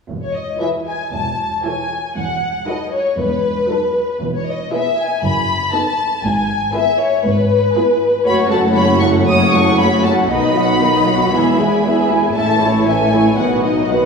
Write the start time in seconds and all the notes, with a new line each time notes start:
0.09 E1 E2
0.22 C#5
0.34 D#5
0.60 E3 E4 G#4 B4 E5
0.86 G#5
1.12 E1 E2 A5
1.63 E3 E4 A4 C#5 G#5
2.14 E1 E2 F#5
2.67 F#3 D#4 A4 B4 D#5
2.93 C#5
3.18 E1 E2 B4
3.70 F#3 D#4 A4 B4
4.21 E1 E2
4.35 C#5
4.47 D#5
4.72 B3 E4 G#4 B4 E5
4.98 G#5
5.23 F#1 F#2 B5
5.73 B3 D#4 A4 B4 A5
6.23 G#1 G#2 G#5
6.74 B3 E4 G#4 B4 E5
6.99 C#5
7.25 G#1 G#2 B4
7.76 B3 E4 G#4 B4
8.25 F#1 F#2 A3 C#4 F#4 C#5 B5
8.51 F#3 A3 A4 F#5 A5
8.76 A3 C#4 F#4 C#5 B5
9.01 F#3 A3 A4 F#5 C#6
9.28 A3 C#4 F#4 C#5 D#6
9.53 F#3 A3 A4 F#5 C#6
9.78 A3 C#4 F#4 C#5 B5
10.04 F#3 A3 A4 F#5 A5
10.28 B1 B2 D#3 B3 D#4 D#5 B5
10.55 F#3 D#4 F#4 F#5
10.81 D#3 B3 D#4 D#5
11.07 F#3 D#4 F#4 F#5
11.31 E1 E2 E3 B3 G#4 E5
11.58 G#3 E4 G#5
11.84 E3 B3 G#4 E5
12.09 G#3 E4 G#5
12.34 A1 A2 E3 C#4 A4 E5 A5
12.60 A3 E4 C#5
12.85 E3 C#4 A4 E5 G#5
13.12 A3 E4 C#5
13.36 B1 B2 D#3 B3 F#4 B4 F#5
13.62 F#3 D#4 D#5
13.88 D#3 B3 F#4 B4 F#5